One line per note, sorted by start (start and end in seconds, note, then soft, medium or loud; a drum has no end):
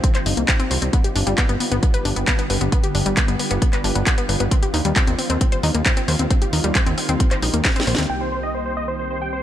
0.00 0.89 D#3 medium
0.00 0.89 G3 medium
0.00 0.89 C4 medium
0.00 0.08 C4 medium
0.00 0.90 F4 medium
0.00 kick loud
0.00 closed hi-hat medium
0.15 0.19 C5 loud
0.15 clap soft
0.15 closed hi-hat soft
0.26 0.34 G1 medium
0.26 0.30 D#4 medium
0.26 open hi-hat loud
0.37 0.45 C2 medium
0.37 0.41 A#3 medium
0.37 closed hi-hat soft
0.48 0.52 C4 loud
0.48 kick loud
0.48 clap loud
0.48 closed hi-hat medium
0.60 0.62 C4 loud
0.60 closed hi-hat soft
0.71 0.79 C2 loud
0.71 0.73 C5 medium
0.71 open hi-hat loud
0.82 0.90 C2 medium
0.82 0.84 C4 medium
0.82 closed hi-hat soft
0.93 4.48 D3 medium
0.93 4.48 G3 medium
0.93 4.48 B3 medium
0.93 0.97 B3 loud
0.93 2.70 G4 medium
0.93 kick loud
0.93 closed hi-hat medium
1.04 1.08 G4 medium
1.04 closed hi-hat medium
1.16 1.23 G1 medium
1.16 1.20 D4 medium
1.16 open hi-hat loud
1.27 1.35 G1 medium
1.27 1.31 G3 loud
1.27 closed hi-hat soft
1.38 1.42 B3 loud
1.38 kick loud
1.38 clap loud
1.38 closed hi-hat medium
1.49 1.57 G1 medium
1.49 1.52 B3 loud
1.49 closed hi-hat soft
1.60 1.63 B3 medium
1.60 open hi-hat loud
1.72 1.79 G1 medium
1.72 1.74 B3 loud
1.72 closed hi-hat soft
1.83 1.87 B3 medium
1.83 kick loud
1.83 closed hi-hat medium
1.94 1.98 B4 loud
1.94 closed hi-hat soft
2.05 2.13 G1 medium
2.05 2.09 D4 medium
2.05 open hi-hat loud
2.16 2.24 G1 medium
2.16 2.20 B3 medium
2.16 closed hi-hat medium
2.28 2.31 B3 loud
2.28 kick loud
2.28 clap loud
2.28 closed hi-hat medium
2.39 2.41 B3 loud
2.39 closed hi-hat soft
2.50 2.58 G1 loud
2.50 2.52 B4 medium
2.50 open hi-hat loud
2.61 2.69 G1 medium
2.61 2.64 B3 medium
2.61 closed hi-hat soft
2.72 2.76 B3 loud
2.72 4.50 F4 medium
2.72 kick loud
2.72 closed hi-hat medium
2.84 2.87 G4 medium
2.84 closed hi-hat medium
2.95 3.02 G1 medium
2.95 2.99 D4 medium
2.95 open hi-hat loud
3.06 3.14 G1 medium
3.06 3.10 G3 loud
3.06 closed hi-hat medium
3.17 3.21 B3 loud
3.17 kick loud
3.17 clap loud
3.17 closed hi-hat medium
3.28 3.36 G1 medium
3.28 3.31 B3 loud
3.28 closed hi-hat medium
3.39 3.42 B3 medium
3.39 open hi-hat loud
3.51 3.58 G1 medium
3.51 3.53 B3 loud
3.51 closed hi-hat medium
3.62 3.66 B3 medium
3.62 kick loud
3.62 closed hi-hat medium
3.73 3.77 B4 loud
3.73 clap soft
3.73 closed hi-hat medium
3.84 3.92 G1 medium
3.84 3.88 D4 medium
3.84 open hi-hat loud
3.95 4.03 G1 medium
3.95 3.99 B3 medium
3.95 closed hi-hat medium
4.07 4.11 B3 loud
4.07 kick loud
4.07 clap loud
4.07 closed hi-hat medium
4.18 4.20 B3 loud
4.18 closed hi-hat medium
4.29 4.37 G1 medium
4.29 4.31 B4 medium
4.29 open hi-hat loud
4.40 4.48 G1 medium
4.40 4.43 B3 medium
4.40 closed hi-hat soft
4.51 8.06 D#3 medium
4.51 8.06 G3 medium
4.51 8.06 A#3 medium
4.51 4.55 C4 loud
4.51 6.29 F4 medium
4.51 kick loud
4.51 closed hi-hat medium
4.63 4.67 G4 medium
4.63 closed hi-hat medium
4.74 4.82 D#2 medium
4.74 4.78 D#4 medium
4.74 open hi-hat loud
4.85 4.93 D#2 medium
4.85 4.89 G3 loud
4.85 closed hi-hat medium
4.96 5.00 C4 loud
4.96 kick loud
4.96 clap loud
4.96 closed hi-hat loud
5.07 5.15 D#2 medium
5.07 5.10 C4 loud
5.07 closed hi-hat medium
5.19 5.21 C4 medium
5.19 open hi-hat loud
5.30 5.37 D#2 medium
5.30 5.32 C4 loud
5.30 closed hi-hat medium
5.41 5.45 C4 medium
5.41 kick loud
5.41 closed hi-hat medium
5.52 5.56 C5 loud
5.52 closed hi-hat medium
5.63 5.71 D#2 medium
5.63 5.67 D#4 medium
5.63 open hi-hat loud
5.75 5.82 D#2 medium
5.75 5.79 A#3 medium
5.75 closed hi-hat medium
5.86 5.90 C4 loud
5.86 kick loud
5.86 clap loud
5.86 closed hi-hat medium
5.97 5.99 C4 loud
5.97 closed hi-hat medium
6.08 6.16 D#2 loud
6.08 6.11 C5 medium
6.08 open hi-hat loud
6.19 6.27 D#2 medium
6.19 6.22 C4 medium
6.19 closed hi-hat medium
6.30 6.34 C4 loud
6.30 8.08 G4 medium
6.30 kick loud
6.30 closed hi-hat loud
6.42 6.46 G4 medium
6.42 closed hi-hat medium
6.53 6.61 D#2 medium
6.53 6.57 D#4 medium
6.53 open hi-hat loud
6.64 6.72 D#2 medium
6.64 6.68 G3 loud
6.64 closed hi-hat medium
6.75 6.79 C4 loud
6.75 kick loud
6.75 clap loud
6.75 closed hi-hat loud
6.86 6.94 D#2 medium
6.86 6.89 C4 loud
6.86 closed hi-hat medium
6.98 7.00 C4 medium
6.98 open hi-hat loud
7.09 7.17 D#2 medium
7.09 7.11 C4 loud
7.09 closed hi-hat medium
7.20 7.24 C4 medium
7.20 kick loud
7.20 closed hi-hat loud
7.31 7.35 C5 loud
7.31 clap soft
7.31 closed hi-hat medium
7.42 7.50 A#1 medium
7.42 7.46 D#4 medium
7.42 open hi-hat loud
7.54 7.61 D#2 medium
7.54 7.58 A#3 medium
7.54 closed hi-hat medium
7.65 7.69 C4 loud
7.65 kick loud
7.65 snare medium
7.65 clap loud
7.65 closed hi-hat medium
7.76 7.78 C4 loud
7.76 snare medium
7.76 closed hi-hat medium
7.87 7.95 A#1 loud
7.87 7.90 C5 medium
7.87 open hi-hat loud
7.95 8.06 D#2 medium
7.95 8.01 C4 medium
7.95 snare medium
7.95 closed hi-hat medium
8.10 9.43 C2 medium
8.10 9.43 D#3 medium
8.10 9.43 G3 medium
8.10 9.43 C4 medium
8.10 9.43 G4 medium
8.10 8.17 G5 medium
8.21 8.28 C5 medium
8.32 8.39 C5 medium
8.43 8.50 D#5 medium
8.54 8.61 C5 medium
8.66 8.73 C5 medium
8.77 8.84 D#5 medium
8.88 8.95 C5 medium
8.99 9.06 C5 medium
9.10 9.17 C5 medium
9.22 9.29 G5 medium
9.33 9.40 C5 medium